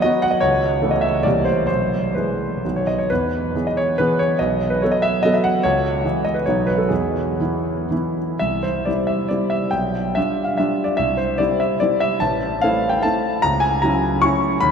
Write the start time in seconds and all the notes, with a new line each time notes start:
0.02 F#3 B3 F#4 D#5
0.22 F#5
0.31 D#5
0.40 C#2 C#5
0.82 E3 A3 A4
0.91 D#5
1.01 E5
1.23 C2 E3 A#3 G4 D5
1.45 C5
1.67 B1 C5
2.15 E3 G#3 G#4 B4
2.65 B1 D#3 B3 F#4
2.76 C#5
2.87 D#5
2.98 C#5
3.10 E2 B4
3.55 E3 B3 G#4
3.67 D#5
3.77 C#5
3.98 E3 B3 G#4 B4
4.19 C#5
4.39 B1 D#5
4.70 B4
4.82 F#3 B3 A4 C#5
4.92 D#5
5.02 E5
5.23 F#3 B3 A4 D#5
5.34 E5
5.44 F#5
5.63 C#2 C#5
6.05 E3 G#3 G#4
6.25 D#5
6.34 B4
6.46 B1 F#3 B3 D#4 C#5
6.67 B4
6.78 A4
6.89 E2 G#4
7.40 E3 B3 E4
7.91 E3 B3 E4
8.39 C2 E5
8.63 C5
8.85 G3 C4 E4 D5
9.07 E5
9.29 G3 C4 E4 D5
9.50 E5
9.71 B1 G5
10.15 G3 D4 F4 E5
10.44 F5
10.58 G3 D4 F4 E5
10.84 D5
10.97 C2 E5
11.17 C5
11.38 G3 C4 E4 D5
11.60 E5
11.80 G3 C4 E4 D5
12.00 E5
12.20 A1 A5
12.61 A3 C4 E4 F5
12.89 G5
13.03 A3 C4 E4 A5
13.42 C#2 A#5
13.60 G#5
13.82 F#3 C#4 E4 A#5
14.22 F#3 C#4 E4 C#6
14.60 D#2 B5